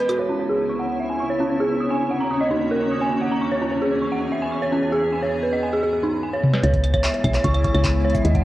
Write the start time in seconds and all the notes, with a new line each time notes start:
0.09 F#4, closed hi-hat, claves, shaker
0.19 C#4 C#5
0.29 C#4
0.40 C#5
0.49 G#4
0.70 C#6
0.80 F#5
1.00 E5
1.10 G#5
1.20 C#6
1.30 C#5
1.40 C#4
1.50 C#5
1.60 G#4
1.80 D#6
1.91 G#5
2.11 F#5
2.21 A#5
2.31 D#6
2.41 D#5
2.51 D#4
2.61 D#5
2.71 A#4
2.91 D#6
3.01 G#5
3.21 F#5
3.31 A#5
3.41 C#6
3.52 C#5
3.62 C#4
3.72 C#5
3.82 G#4
4.02 C#6
4.12 F#5
4.32 E5
4.42 G#5
4.52 C#6
4.62 C#5
4.72 C#4
4.82 C#5
4.92 G#4
5.13 G#5
5.23 C#5
5.43 B4
5.53 D#5
5.63 G#5
5.73 G#4
5.83 G#4
5.93 G#4
6.03 D#4
6.23 G#5
6.33 C#5
6.43 mid tom
6.53 B4, snare
6.63 C#2 G#3 G#4 C#5, closed hi-hat
6.74 kick, closed hi-hat
6.84 closed hi-hat, claves
6.94 C#5, kick, closed hi-hat, claves
7.04 E5, clap, closed hi-hat
7.14 C#5, closed hi-hat
7.24 B1 E5, kick, closed hi-hat, claves
7.34 C#5, clap, closed hi-hat, shaker
7.44 C#2 C#6, kick, closed hi-hat
7.54 C#5, closed hi-hat, claves
7.64 C#6, kick, closed hi-hat
7.74 C#2 C#5, closed hi-hat, claves
7.84 kick, clap, closed hi-hat
8.04 C#5
8.10 closed hi-hat
8.15 E5, kick, closed hi-hat, shaker
8.25 D#2 D#5, closed hi-hat
8.35 F#5, kick, closed hi-hat